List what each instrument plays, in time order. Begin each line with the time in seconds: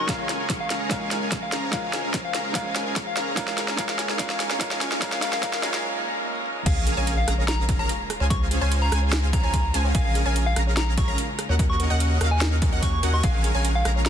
Already playing: grand piano F#3 C#4 D#4 A#4, string section C#4 A#4
0.07 grand piano G#3 C#4 F4 A#4, string section G#3 F4, supersaw synth C#4 G#4 A#4 F5 G#5, soft synth lead F5, kick, snare, closed hi-hat
0.19 soft synth lead F5
0.29 snare, closed hi-hat
0.39 supersaw synth C#4 G#4 A#4 F5 G#5
0.50 kick, snare, closed hi-hat
0.60 soft synth lead F5
0.70 supersaw synth C#4 G#4 A#4 F5 A#5, snare, closed hi-hat
0.89 grand piano G#3 C#4 F4 A#4, supersaw synth C#4 G#4 A#4 F5 G#5, soft synth lead F5, kick, snare, closed hi-hat
1.01 soft synth lead F5
1.11 snare, closed hi-hat
1.22 supersaw synth C#4 G#4 A#4 F5 G#5
1.32 kick, snare, closed hi-hat
1.43 soft synth lead F5
1.52 supersaw synth C#4 G#4 A#4 F5 A#5, string section F4 C5, snare, closed hi-hat
1.71 grand piano G#3 C#4 F4 A#4, supersaw synth C#4 G#4 A#4 F5 G#5, soft synth lead F5, kick, snare, closed hi-hat
1.84 soft synth lead F5
1.93 snare, closed hi-hat
2.04 supersaw synth C#4 G#4 A#4 F5 G#5
2.14 kick, snare, closed hi-hat
2.25 soft synth lead F5
2.34 supersaw synth C#4 G#4 A#4 F5 A#5, snare, closed hi-hat
2.53 grand piano G#3 C#4 F4 A#4, supersaw synth C#4 G#4 A#4 F5 G#5, soft synth lead F5, kick, snare, closed hi-hat
2.66 soft synth lead F5
2.76 snare, closed hi-hat
2.86 supersaw synth C#4 G#4 A#4 F5 G#5
2.96 kick, snare, closed hi-hat
3.07 soft synth lead F5
3.17 supersaw synth C#4 G#4 A#4 F5 A#5, snare, closed hi-hat
3.35 grand piano G#3 C#4 F4 A#4, string section G#3 C#4 F4 A#4, supersaw synth C#4 G#4 A#4 F5 G#5, soft synth lead F5, kick, snare, closed hi-hat
3.48 soft synth lead F5, snare
3.58 snare, closed hi-hat
3.68 supersaw synth C#4 G#4 A#4 F5 G#5, snare
3.76 grand piano G#3 C#4 F4, supersaw synth C#4 G#4 A#4 F5 G#5, soft synth lead F5, kick, snare, closed hi-hat
3.80 grand piano A#4
3.89 soft synth lead F5, snare
3.99 snare, closed hi-hat
4.09 supersaw synth C#4 G#4 A#4 F5 G#5, snare
4.18 grand piano G#3 C#4 F4, supersaw synth C#4 G#4 A#4 F5 G#5, soft synth lead F5, kick, snare, closed hi-hat
4.22 grand piano A#4
4.30 soft synth lead F5, snare
4.40 snare, closed hi-hat
4.50 supersaw synth C#4 G#4 A#4 F5 G#5, snare
4.59 grand piano G#3 C#4 F4 A#4, supersaw synth C#4 G#4 A#4 F5 G#5, soft synth lead F5, kick, snare, closed hi-hat
4.71 soft synth lead F5, snare
4.81 snare, closed hi-hat
4.92 supersaw synth C#4 G#4 A#4 F5 G#5, snare
5.00 string section F#3 D#4, grand piano G#3 C#4 F4 A#4, supersaw synth C#4 G#4 A#4 F5 G#5, soft synth lead F5, kick, snare, closed hi-hat
5.12 soft synth lead F5, snare
5.20 grand piano G#3 C#4 F4, supersaw synth C#4 G#4 A#4 F5 G#5, soft synth lead F5, snare, closed hi-hat
5.24 grand piano A#4
5.33 soft synth lead F5, snare
5.41 grand piano G#3 C#4 F4, supersaw synth C#4 G#4 A#4 F5 G#5, soft synth lead F5, kick, snare, closed hi-hat
5.45 grand piano A#4
5.53 soft synth lead F5, snare
5.62 grand piano G#3 C#4 F4 A#4, supersaw synth C#4 G#4 A#4 F5 G#5, soft synth lead F5, snare, closed hi-hat
5.74 soft synth lead F5, snare
5.84 swell
6.25 high tom
6.36 high tom
6.46 mid tom
6.56 mid tom
6.66 sub bass A#1, string section C#3 G#3 A#3 F4, supersaw synth C#4 G#4 A#4 F5 G#5, synth arpeggio sound G#4, soft synth lead F5, synth pluck G#5, kick, closed hi-hat, crash, sub drop
6.76 soft synth lead F5
6.87 synth arpeggio sound G#4, closed hi-hat
6.97 sub bass A#1, supersaw synth C#4 G#4 A#4 F5 G#5, synth arpeggio sound C#5, synth pluck G#5
7.07 synth arpeggio sound A#5, closed hi-hat
7.17 soft synth lead F5
7.28 sub bass A#1, supersaw synth C#4 G#4 A#4 F5 A#5, synth arpeggio sound G#4, synth pluck A#5, cross-stick, closed hi-hat
7.38 synth arpeggio sound C#5
7.48 synth arpeggio sound G#4, soft synth lead A#5, snare, closed hi-hat
7.69 synth arpeggio sound G#4, kick, closed hi-hat
7.79 sub bass A#1, supersaw synth C#4 G#4 A#4 F5 A#5, synth arpeggio sound C#5, soft synth lead A#5, synth pluck A#5
7.89 synth arpeggio sound A#5, closed hi-hat
8.10 string section C#3 G#3 C5, synth arpeggio sound G#4, cross-stick, closed hi-hat
8.20 sub bass C#2, supersaw synth C#4 G#4 C5 F5 G#5, synth arpeggio sound C#5, synth pluck G#5
8.30 synth arpeggio sound G#4, soft synth lead C#6, kick, closed hi-hat
8.51 synth arpeggio sound G#4, closed hi-hat
8.61 sub bass C#2, supersaw synth C#4 G#4 C5 F5 G#5, synth arpeggio sound C#5, synth pluck G#5
8.71 synth arpeggio sound C6, closed hi-hat
8.82 soft synth lead A#5
8.92 sub bass C#2, supersaw synth C#4 G#4 C5 F5 G#5, synth arpeggio sound G#4, synth pluck G#5, cross-stick, closed hi-hat
9.02 synth arpeggio sound C#5
9.12 synth arpeggio sound G#4, snare, closed hi-hat
9.33 synth arpeggio sound G#4, soft synth lead A#5, kick, closed hi-hat
9.43 sub bass C#2, supersaw synth C#4 G#4 C5 F5 G#5, synth arpeggio sound C#5, synth pluck G#5
9.53 synth arpeggio sound C6, kick, closed hi-hat
9.74 sub bass C#2, supersaw synth C#4 G#4 C5 F5 G#5, synth arpeggio sound G#4, synth pluck G#5, closed hi-hat
9.85 synth arpeggio sound C#5
9.95 sub bass A#1, string section G#3 A#3, supersaw synth C#4 G#4 A#4 F5 G#5, synth arpeggio sound G#4, soft synth lead F5, synth pluck G#5, kick, closed hi-hat
10.05 soft synth lead F5
10.15 synth arpeggio sound G#4, closed hi-hat
10.26 sub bass A#1, supersaw synth C#4 G#4 A#4 F5 G#5, synth arpeggio sound C#5, synth pluck G#5
10.36 synth arpeggio sound A#5, closed hi-hat
10.46 soft synth lead F5
10.56 sub bass A#1, supersaw synth C#4 G#4 A#4 F5 A#5, synth arpeggio sound G#4, synth pluck A#5, cross-stick, closed hi-hat
10.67 synth arpeggio sound C#5
10.77 synth arpeggio sound G#4, soft synth lead A#5, snare, closed hi-hat
10.97 synth arpeggio sound G#4, soft synth lead C#6, kick, closed hi-hat
11.08 sub bass A#1, supersaw synth C#4 G#4 A#4 F5 A#5, synth arpeggio sound C#5, synth pluck A#5
11.18 synth arpeggio sound A#5, closed hi-hat
11.39 synth arpeggio sound G#4, cross-stick, closed hi-hat
11.49 sub bass D#2, supersaw synth C#4 F#4 A#4 D#5 F#5, synth arpeggio sound C#5, synth pluck F#5
11.59 string section F#3 D#4, synth arpeggio sound A#4, kick, closed hi-hat
11.70 soft synth lead C#6
11.80 synth arpeggio sound A#4, closed hi-hat
11.90 sub bass D#2, supersaw synth C#4 F#4 A#4 D#5 F#5, synth arpeggio sound D#5, synth pluck F#5
12.00 synth arpeggio sound C#6, closed hi-hat
12.21 sub bass D#2, supersaw synth C#4 F#4 A#4 D#5 F5, synth arpeggio sound A#4, synth pluck F5, cross-stick, closed hi-hat
12.31 synth arpeggio sound D#5, soft synth lead G#5
12.41 synth arpeggio sound A#4, snare, closed hi-hat
12.62 synth arpeggio sound A#4, kick, closed hi-hat
12.72 sub bass D#2, supersaw synth C#4 F#4 A#4 D#5 F#5, synth arpeggio sound D#5, synth pluck F#5
12.82 synth arpeggio sound C#6, soft synth lead C#6, kick, closed hi-hat
12.93 soft synth lead C#6
13.03 sub bass D#2, supersaw synth C#4 F#4 A#4 D#5 F#5, synth arpeggio sound A#4, synth pluck F#5, closed hi-hat
13.13 synth arpeggio sound D#5, soft synth lead C#6
13.23 sub bass A#1, string section C#3 G#3 F4, supersaw synth C#4 G#4 A#4 F5 G#5, synth arpeggio sound G#4, soft synth lead F5, synth pluck G#5, kick, closed hi-hat
13.34 soft synth lead F5
13.44 synth arpeggio sound G#4, closed hi-hat
13.55 sub bass A#1, supersaw synth C#4 G#4 A#4 F5 G#5, synth arpeggio sound C#5, synth pluck G#5
13.65 synth arpeggio sound A#5, closed hi-hat
13.75 soft synth lead F5
13.85 sub bass A#1, supersaw synth C#4 G#4 A#4 F5 A#5, synth arpeggio sound G#4, synth pluck A#5, cross-stick, closed hi-hat
13.96 synth arpeggio sound C#5
14.06 synth arpeggio sound G#4, soft synth lead A#5, snare, closed hi-hat